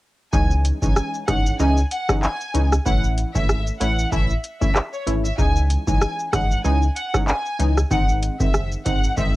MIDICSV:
0, 0, Header, 1, 5, 480
1, 0, Start_track
1, 0, Key_signature, 4, "minor"
1, 0, Tempo, 631579
1, 252, Time_signature, 4, 2, 24, 8
1, 7114, End_track
2, 0, Start_track
2, 0, Title_t, "Violin section"
2, 0, Program_c, 0, 48
2, 252, Note_on_c, 0, 80, 95
2, 355, Note_off_c, 0, 80, 0
2, 627, Note_on_c, 0, 80, 79
2, 810, Note_off_c, 0, 80, 0
2, 973, Note_on_c, 0, 78, 80
2, 1156, Note_off_c, 0, 78, 0
2, 1212, Note_on_c, 0, 80, 92
2, 1315, Note_off_c, 0, 80, 0
2, 1452, Note_on_c, 0, 78, 83
2, 1555, Note_off_c, 0, 78, 0
2, 1692, Note_on_c, 0, 80, 90
2, 2044, Note_off_c, 0, 80, 0
2, 2172, Note_on_c, 0, 78, 101
2, 2275, Note_off_c, 0, 78, 0
2, 2547, Note_on_c, 0, 76, 89
2, 2730, Note_off_c, 0, 76, 0
2, 2892, Note_on_c, 0, 78, 89
2, 3076, Note_off_c, 0, 78, 0
2, 3132, Note_on_c, 0, 76, 97
2, 3235, Note_off_c, 0, 76, 0
2, 3507, Note_on_c, 0, 76, 80
2, 3588, Note_off_c, 0, 76, 0
2, 3747, Note_on_c, 0, 73, 76
2, 3827, Note_off_c, 0, 73, 0
2, 3986, Note_on_c, 0, 76, 78
2, 4067, Note_off_c, 0, 76, 0
2, 4092, Note_on_c, 0, 80, 102
2, 4195, Note_off_c, 0, 80, 0
2, 4466, Note_on_c, 0, 80, 83
2, 4650, Note_off_c, 0, 80, 0
2, 4811, Note_on_c, 0, 78, 85
2, 4995, Note_off_c, 0, 78, 0
2, 5052, Note_on_c, 0, 80, 85
2, 5155, Note_off_c, 0, 80, 0
2, 5291, Note_on_c, 0, 78, 82
2, 5394, Note_off_c, 0, 78, 0
2, 5531, Note_on_c, 0, 80, 88
2, 5884, Note_off_c, 0, 80, 0
2, 6012, Note_on_c, 0, 78, 103
2, 6115, Note_off_c, 0, 78, 0
2, 6386, Note_on_c, 0, 76, 78
2, 6570, Note_off_c, 0, 76, 0
2, 6732, Note_on_c, 0, 78, 85
2, 6915, Note_off_c, 0, 78, 0
2, 6971, Note_on_c, 0, 76, 92
2, 7075, Note_off_c, 0, 76, 0
2, 7114, End_track
3, 0, Start_track
3, 0, Title_t, "Synth stab"
3, 0, Program_c, 1, 62
3, 251, Note_on_c, 1, 52, 93
3, 252, Note_on_c, 1, 56, 87
3, 253, Note_on_c, 1, 61, 88
3, 255, Note_on_c, 1, 63, 98
3, 594, Note_off_c, 1, 52, 0
3, 594, Note_off_c, 1, 56, 0
3, 595, Note_off_c, 1, 61, 0
3, 596, Note_off_c, 1, 63, 0
3, 625, Note_on_c, 1, 52, 78
3, 626, Note_on_c, 1, 56, 74
3, 628, Note_on_c, 1, 61, 73
3, 629, Note_on_c, 1, 63, 89
3, 946, Note_off_c, 1, 52, 0
3, 947, Note_off_c, 1, 56, 0
3, 948, Note_off_c, 1, 61, 0
3, 948, Note_off_c, 1, 63, 0
3, 970, Note_on_c, 1, 52, 77
3, 972, Note_on_c, 1, 56, 73
3, 973, Note_on_c, 1, 61, 71
3, 975, Note_on_c, 1, 63, 89
3, 1194, Note_off_c, 1, 52, 0
3, 1195, Note_off_c, 1, 56, 0
3, 1196, Note_off_c, 1, 61, 0
3, 1197, Note_off_c, 1, 63, 0
3, 1211, Note_on_c, 1, 52, 100
3, 1213, Note_on_c, 1, 56, 89
3, 1214, Note_on_c, 1, 61, 93
3, 1215, Note_on_c, 1, 63, 107
3, 1372, Note_off_c, 1, 52, 0
3, 1373, Note_off_c, 1, 56, 0
3, 1374, Note_off_c, 1, 61, 0
3, 1374, Note_off_c, 1, 63, 0
3, 1585, Note_on_c, 1, 52, 78
3, 1586, Note_on_c, 1, 56, 75
3, 1587, Note_on_c, 1, 61, 75
3, 1589, Note_on_c, 1, 63, 87
3, 1724, Note_off_c, 1, 52, 0
3, 1725, Note_off_c, 1, 56, 0
3, 1726, Note_off_c, 1, 61, 0
3, 1727, Note_off_c, 1, 63, 0
3, 1930, Note_on_c, 1, 52, 79
3, 1932, Note_on_c, 1, 56, 71
3, 1933, Note_on_c, 1, 61, 71
3, 1935, Note_on_c, 1, 63, 85
3, 2092, Note_off_c, 1, 52, 0
3, 2093, Note_off_c, 1, 56, 0
3, 2093, Note_off_c, 1, 61, 0
3, 2094, Note_off_c, 1, 63, 0
3, 2171, Note_on_c, 1, 52, 89
3, 2172, Note_on_c, 1, 57, 84
3, 2173, Note_on_c, 1, 61, 88
3, 2175, Note_on_c, 1, 64, 106
3, 2514, Note_off_c, 1, 52, 0
3, 2514, Note_off_c, 1, 57, 0
3, 2515, Note_off_c, 1, 61, 0
3, 2516, Note_off_c, 1, 64, 0
3, 2545, Note_on_c, 1, 52, 81
3, 2546, Note_on_c, 1, 57, 71
3, 2548, Note_on_c, 1, 61, 71
3, 2549, Note_on_c, 1, 64, 85
3, 2866, Note_off_c, 1, 52, 0
3, 2867, Note_off_c, 1, 57, 0
3, 2867, Note_off_c, 1, 61, 0
3, 2868, Note_off_c, 1, 64, 0
3, 2891, Note_on_c, 1, 52, 78
3, 2892, Note_on_c, 1, 57, 74
3, 2893, Note_on_c, 1, 61, 73
3, 2895, Note_on_c, 1, 64, 89
3, 3115, Note_off_c, 1, 52, 0
3, 3115, Note_off_c, 1, 57, 0
3, 3116, Note_off_c, 1, 61, 0
3, 3117, Note_off_c, 1, 64, 0
3, 3130, Note_on_c, 1, 52, 92
3, 3132, Note_on_c, 1, 57, 91
3, 3133, Note_on_c, 1, 61, 90
3, 3135, Note_on_c, 1, 64, 105
3, 3292, Note_off_c, 1, 52, 0
3, 3292, Note_off_c, 1, 57, 0
3, 3293, Note_off_c, 1, 61, 0
3, 3294, Note_off_c, 1, 64, 0
3, 3505, Note_on_c, 1, 52, 77
3, 3506, Note_on_c, 1, 57, 70
3, 3508, Note_on_c, 1, 61, 73
3, 3509, Note_on_c, 1, 64, 91
3, 3644, Note_off_c, 1, 52, 0
3, 3645, Note_off_c, 1, 57, 0
3, 3646, Note_off_c, 1, 61, 0
3, 3647, Note_off_c, 1, 64, 0
3, 3850, Note_on_c, 1, 52, 77
3, 3851, Note_on_c, 1, 57, 72
3, 3853, Note_on_c, 1, 61, 70
3, 3855, Note_on_c, 1, 64, 85
3, 4012, Note_off_c, 1, 52, 0
3, 4012, Note_off_c, 1, 57, 0
3, 4013, Note_off_c, 1, 61, 0
3, 4014, Note_off_c, 1, 64, 0
3, 4090, Note_on_c, 1, 52, 91
3, 4091, Note_on_c, 1, 56, 85
3, 4093, Note_on_c, 1, 61, 81
3, 4094, Note_on_c, 1, 63, 100
3, 4433, Note_off_c, 1, 52, 0
3, 4434, Note_off_c, 1, 56, 0
3, 4435, Note_off_c, 1, 61, 0
3, 4435, Note_off_c, 1, 63, 0
3, 4464, Note_on_c, 1, 52, 78
3, 4465, Note_on_c, 1, 56, 74
3, 4467, Note_on_c, 1, 61, 74
3, 4468, Note_on_c, 1, 63, 82
3, 4786, Note_off_c, 1, 52, 0
3, 4786, Note_off_c, 1, 56, 0
3, 4787, Note_off_c, 1, 61, 0
3, 4788, Note_off_c, 1, 63, 0
3, 4810, Note_on_c, 1, 52, 82
3, 4811, Note_on_c, 1, 56, 74
3, 4813, Note_on_c, 1, 61, 74
3, 4814, Note_on_c, 1, 63, 88
3, 5034, Note_off_c, 1, 52, 0
3, 5035, Note_off_c, 1, 56, 0
3, 5036, Note_off_c, 1, 61, 0
3, 5036, Note_off_c, 1, 63, 0
3, 5050, Note_on_c, 1, 52, 95
3, 5051, Note_on_c, 1, 56, 87
3, 5053, Note_on_c, 1, 61, 89
3, 5054, Note_on_c, 1, 63, 105
3, 5212, Note_off_c, 1, 52, 0
3, 5212, Note_off_c, 1, 56, 0
3, 5213, Note_off_c, 1, 61, 0
3, 5214, Note_off_c, 1, 63, 0
3, 5424, Note_on_c, 1, 52, 78
3, 5426, Note_on_c, 1, 56, 69
3, 5427, Note_on_c, 1, 61, 74
3, 5429, Note_on_c, 1, 63, 87
3, 5564, Note_off_c, 1, 52, 0
3, 5565, Note_off_c, 1, 56, 0
3, 5566, Note_off_c, 1, 61, 0
3, 5566, Note_off_c, 1, 63, 0
3, 5770, Note_on_c, 1, 52, 82
3, 5771, Note_on_c, 1, 56, 74
3, 5773, Note_on_c, 1, 61, 72
3, 5774, Note_on_c, 1, 63, 87
3, 5931, Note_off_c, 1, 52, 0
3, 5932, Note_off_c, 1, 56, 0
3, 5933, Note_off_c, 1, 61, 0
3, 5934, Note_off_c, 1, 63, 0
3, 6010, Note_on_c, 1, 51, 96
3, 6011, Note_on_c, 1, 56, 85
3, 6013, Note_on_c, 1, 60, 84
3, 6014, Note_on_c, 1, 63, 102
3, 6353, Note_off_c, 1, 51, 0
3, 6354, Note_off_c, 1, 56, 0
3, 6355, Note_off_c, 1, 60, 0
3, 6356, Note_off_c, 1, 63, 0
3, 6384, Note_on_c, 1, 51, 82
3, 6386, Note_on_c, 1, 56, 71
3, 6387, Note_on_c, 1, 60, 74
3, 6706, Note_off_c, 1, 51, 0
3, 6707, Note_off_c, 1, 56, 0
3, 6707, Note_off_c, 1, 60, 0
3, 6730, Note_on_c, 1, 51, 82
3, 6731, Note_on_c, 1, 56, 70
3, 6733, Note_on_c, 1, 60, 73
3, 6734, Note_on_c, 1, 63, 88
3, 6954, Note_off_c, 1, 51, 0
3, 6955, Note_off_c, 1, 56, 0
3, 6956, Note_off_c, 1, 60, 0
3, 6956, Note_off_c, 1, 63, 0
3, 6970, Note_on_c, 1, 51, 101
3, 6971, Note_on_c, 1, 56, 87
3, 6973, Note_on_c, 1, 60, 88
3, 6974, Note_on_c, 1, 63, 108
3, 7114, Note_off_c, 1, 51, 0
3, 7114, Note_off_c, 1, 56, 0
3, 7114, Note_off_c, 1, 60, 0
3, 7114, Note_off_c, 1, 63, 0
3, 7114, End_track
4, 0, Start_track
4, 0, Title_t, "Sub bass"
4, 0, Program_c, 2, 38
4, 253, Note_on_c, 2, 37, 116
4, 544, Note_off_c, 2, 37, 0
4, 626, Note_on_c, 2, 33, 85
4, 708, Note_off_c, 2, 33, 0
4, 975, Note_on_c, 2, 32, 92
4, 1161, Note_off_c, 2, 32, 0
4, 1213, Note_on_c, 2, 37, 110
4, 1400, Note_off_c, 2, 37, 0
4, 1933, Note_on_c, 2, 37, 95
4, 2120, Note_off_c, 2, 37, 0
4, 2173, Note_on_c, 2, 33, 117
4, 2465, Note_off_c, 2, 33, 0
4, 2546, Note_on_c, 2, 32, 87
4, 2816, Note_off_c, 2, 32, 0
4, 2893, Note_on_c, 2, 33, 97
4, 3080, Note_off_c, 2, 33, 0
4, 3133, Note_on_c, 2, 33, 110
4, 3320, Note_off_c, 2, 33, 0
4, 3853, Note_on_c, 2, 32, 88
4, 4040, Note_off_c, 2, 32, 0
4, 4093, Note_on_c, 2, 37, 112
4, 4385, Note_off_c, 2, 37, 0
4, 4466, Note_on_c, 2, 33, 93
4, 4548, Note_off_c, 2, 33, 0
4, 4815, Note_on_c, 2, 32, 91
4, 5001, Note_off_c, 2, 32, 0
4, 5053, Note_on_c, 2, 37, 119
4, 5240, Note_off_c, 2, 37, 0
4, 5772, Note_on_c, 2, 37, 88
4, 5960, Note_off_c, 2, 37, 0
4, 6013, Note_on_c, 2, 32, 112
4, 6304, Note_off_c, 2, 32, 0
4, 6385, Note_on_c, 2, 30, 96
4, 6655, Note_off_c, 2, 30, 0
4, 6735, Note_on_c, 2, 32, 94
4, 6921, Note_off_c, 2, 32, 0
4, 6972, Note_on_c, 2, 32, 108
4, 7114, Note_off_c, 2, 32, 0
4, 7114, End_track
5, 0, Start_track
5, 0, Title_t, "Drums"
5, 253, Note_on_c, 9, 36, 107
5, 253, Note_on_c, 9, 82, 80
5, 329, Note_off_c, 9, 36, 0
5, 329, Note_off_c, 9, 82, 0
5, 387, Note_on_c, 9, 82, 53
5, 463, Note_off_c, 9, 82, 0
5, 494, Note_on_c, 9, 42, 72
5, 494, Note_on_c, 9, 82, 49
5, 570, Note_off_c, 9, 42, 0
5, 570, Note_off_c, 9, 82, 0
5, 626, Note_on_c, 9, 36, 99
5, 628, Note_on_c, 9, 82, 76
5, 702, Note_off_c, 9, 36, 0
5, 704, Note_off_c, 9, 82, 0
5, 732, Note_on_c, 9, 37, 99
5, 732, Note_on_c, 9, 82, 79
5, 808, Note_off_c, 9, 37, 0
5, 808, Note_off_c, 9, 82, 0
5, 867, Note_on_c, 9, 82, 66
5, 943, Note_off_c, 9, 82, 0
5, 972, Note_on_c, 9, 37, 94
5, 973, Note_on_c, 9, 42, 74
5, 973, Note_on_c, 9, 82, 56
5, 975, Note_on_c, 9, 36, 98
5, 1048, Note_off_c, 9, 37, 0
5, 1049, Note_off_c, 9, 42, 0
5, 1049, Note_off_c, 9, 82, 0
5, 1051, Note_off_c, 9, 36, 0
5, 1110, Note_on_c, 9, 82, 76
5, 1186, Note_off_c, 9, 82, 0
5, 1212, Note_on_c, 9, 82, 72
5, 1288, Note_off_c, 9, 82, 0
5, 1346, Note_on_c, 9, 82, 60
5, 1422, Note_off_c, 9, 82, 0
5, 1453, Note_on_c, 9, 42, 69
5, 1453, Note_on_c, 9, 82, 51
5, 1529, Note_off_c, 9, 42, 0
5, 1529, Note_off_c, 9, 82, 0
5, 1588, Note_on_c, 9, 37, 99
5, 1588, Note_on_c, 9, 82, 71
5, 1589, Note_on_c, 9, 36, 91
5, 1664, Note_off_c, 9, 37, 0
5, 1664, Note_off_c, 9, 82, 0
5, 1665, Note_off_c, 9, 36, 0
5, 1693, Note_on_c, 9, 39, 87
5, 1695, Note_on_c, 9, 82, 73
5, 1769, Note_off_c, 9, 39, 0
5, 1771, Note_off_c, 9, 82, 0
5, 1828, Note_on_c, 9, 82, 47
5, 1904, Note_off_c, 9, 82, 0
5, 1934, Note_on_c, 9, 42, 82
5, 1934, Note_on_c, 9, 82, 59
5, 2010, Note_off_c, 9, 42, 0
5, 2010, Note_off_c, 9, 82, 0
5, 2069, Note_on_c, 9, 37, 88
5, 2070, Note_on_c, 9, 82, 76
5, 2145, Note_off_c, 9, 37, 0
5, 2146, Note_off_c, 9, 82, 0
5, 2173, Note_on_c, 9, 36, 104
5, 2173, Note_on_c, 9, 82, 79
5, 2249, Note_off_c, 9, 36, 0
5, 2249, Note_off_c, 9, 82, 0
5, 2308, Note_on_c, 9, 82, 54
5, 2384, Note_off_c, 9, 82, 0
5, 2414, Note_on_c, 9, 42, 75
5, 2414, Note_on_c, 9, 82, 50
5, 2490, Note_off_c, 9, 42, 0
5, 2490, Note_off_c, 9, 82, 0
5, 2546, Note_on_c, 9, 36, 100
5, 2548, Note_on_c, 9, 82, 74
5, 2622, Note_off_c, 9, 36, 0
5, 2624, Note_off_c, 9, 82, 0
5, 2653, Note_on_c, 9, 37, 100
5, 2653, Note_on_c, 9, 82, 80
5, 2729, Note_off_c, 9, 37, 0
5, 2729, Note_off_c, 9, 82, 0
5, 2788, Note_on_c, 9, 82, 65
5, 2864, Note_off_c, 9, 82, 0
5, 2894, Note_on_c, 9, 42, 77
5, 2894, Note_on_c, 9, 82, 55
5, 2970, Note_off_c, 9, 42, 0
5, 2970, Note_off_c, 9, 82, 0
5, 3031, Note_on_c, 9, 82, 79
5, 3107, Note_off_c, 9, 82, 0
5, 3133, Note_on_c, 9, 36, 89
5, 3133, Note_on_c, 9, 82, 67
5, 3209, Note_off_c, 9, 36, 0
5, 3209, Note_off_c, 9, 82, 0
5, 3266, Note_on_c, 9, 82, 59
5, 3342, Note_off_c, 9, 82, 0
5, 3373, Note_on_c, 9, 42, 68
5, 3373, Note_on_c, 9, 82, 50
5, 3449, Note_off_c, 9, 42, 0
5, 3449, Note_off_c, 9, 82, 0
5, 3509, Note_on_c, 9, 36, 95
5, 3509, Note_on_c, 9, 82, 73
5, 3585, Note_off_c, 9, 36, 0
5, 3585, Note_off_c, 9, 82, 0
5, 3614, Note_on_c, 9, 37, 90
5, 3614, Note_on_c, 9, 39, 89
5, 3616, Note_on_c, 9, 82, 69
5, 3690, Note_off_c, 9, 37, 0
5, 3690, Note_off_c, 9, 39, 0
5, 3692, Note_off_c, 9, 82, 0
5, 3749, Note_on_c, 9, 82, 50
5, 3825, Note_off_c, 9, 82, 0
5, 3854, Note_on_c, 9, 42, 80
5, 3854, Note_on_c, 9, 82, 61
5, 3930, Note_off_c, 9, 42, 0
5, 3930, Note_off_c, 9, 82, 0
5, 3990, Note_on_c, 9, 82, 76
5, 4066, Note_off_c, 9, 82, 0
5, 4093, Note_on_c, 9, 36, 107
5, 4093, Note_on_c, 9, 82, 83
5, 4169, Note_off_c, 9, 36, 0
5, 4169, Note_off_c, 9, 82, 0
5, 4227, Note_on_c, 9, 82, 56
5, 4303, Note_off_c, 9, 82, 0
5, 4333, Note_on_c, 9, 42, 72
5, 4333, Note_on_c, 9, 82, 51
5, 4409, Note_off_c, 9, 42, 0
5, 4409, Note_off_c, 9, 82, 0
5, 4466, Note_on_c, 9, 36, 97
5, 4467, Note_on_c, 9, 82, 74
5, 4542, Note_off_c, 9, 36, 0
5, 4543, Note_off_c, 9, 82, 0
5, 4572, Note_on_c, 9, 37, 97
5, 4572, Note_on_c, 9, 82, 82
5, 4648, Note_off_c, 9, 37, 0
5, 4648, Note_off_c, 9, 82, 0
5, 4707, Note_on_c, 9, 82, 66
5, 4783, Note_off_c, 9, 82, 0
5, 4812, Note_on_c, 9, 37, 96
5, 4813, Note_on_c, 9, 42, 77
5, 4813, Note_on_c, 9, 82, 58
5, 4815, Note_on_c, 9, 36, 93
5, 4888, Note_off_c, 9, 37, 0
5, 4889, Note_off_c, 9, 42, 0
5, 4889, Note_off_c, 9, 82, 0
5, 4891, Note_off_c, 9, 36, 0
5, 4950, Note_on_c, 9, 82, 82
5, 5026, Note_off_c, 9, 82, 0
5, 5052, Note_on_c, 9, 82, 71
5, 5128, Note_off_c, 9, 82, 0
5, 5185, Note_on_c, 9, 82, 56
5, 5261, Note_off_c, 9, 82, 0
5, 5293, Note_on_c, 9, 42, 72
5, 5293, Note_on_c, 9, 82, 48
5, 5369, Note_off_c, 9, 42, 0
5, 5369, Note_off_c, 9, 82, 0
5, 5428, Note_on_c, 9, 37, 93
5, 5428, Note_on_c, 9, 82, 76
5, 5429, Note_on_c, 9, 36, 92
5, 5504, Note_off_c, 9, 37, 0
5, 5504, Note_off_c, 9, 82, 0
5, 5505, Note_off_c, 9, 36, 0
5, 5533, Note_on_c, 9, 39, 88
5, 5535, Note_on_c, 9, 82, 72
5, 5609, Note_off_c, 9, 39, 0
5, 5611, Note_off_c, 9, 82, 0
5, 5668, Note_on_c, 9, 82, 52
5, 5744, Note_off_c, 9, 82, 0
5, 5774, Note_on_c, 9, 42, 83
5, 5774, Note_on_c, 9, 82, 59
5, 5850, Note_off_c, 9, 42, 0
5, 5850, Note_off_c, 9, 82, 0
5, 5909, Note_on_c, 9, 37, 89
5, 5909, Note_on_c, 9, 82, 75
5, 5985, Note_off_c, 9, 37, 0
5, 5985, Note_off_c, 9, 82, 0
5, 6012, Note_on_c, 9, 36, 107
5, 6013, Note_on_c, 9, 82, 80
5, 6088, Note_off_c, 9, 36, 0
5, 6089, Note_off_c, 9, 82, 0
5, 6147, Note_on_c, 9, 82, 54
5, 6223, Note_off_c, 9, 82, 0
5, 6253, Note_on_c, 9, 42, 70
5, 6253, Note_on_c, 9, 82, 54
5, 6329, Note_off_c, 9, 42, 0
5, 6329, Note_off_c, 9, 82, 0
5, 6385, Note_on_c, 9, 36, 96
5, 6387, Note_on_c, 9, 82, 72
5, 6461, Note_off_c, 9, 36, 0
5, 6463, Note_off_c, 9, 82, 0
5, 6491, Note_on_c, 9, 37, 98
5, 6492, Note_on_c, 9, 82, 82
5, 6567, Note_off_c, 9, 37, 0
5, 6568, Note_off_c, 9, 82, 0
5, 6627, Note_on_c, 9, 82, 65
5, 6703, Note_off_c, 9, 82, 0
5, 6732, Note_on_c, 9, 42, 80
5, 6732, Note_on_c, 9, 82, 57
5, 6734, Note_on_c, 9, 36, 95
5, 6808, Note_off_c, 9, 42, 0
5, 6808, Note_off_c, 9, 82, 0
5, 6810, Note_off_c, 9, 36, 0
5, 6869, Note_on_c, 9, 82, 80
5, 6945, Note_off_c, 9, 82, 0
5, 6971, Note_on_c, 9, 82, 70
5, 6972, Note_on_c, 9, 36, 87
5, 7047, Note_off_c, 9, 82, 0
5, 7048, Note_off_c, 9, 36, 0
5, 7114, End_track
0, 0, End_of_file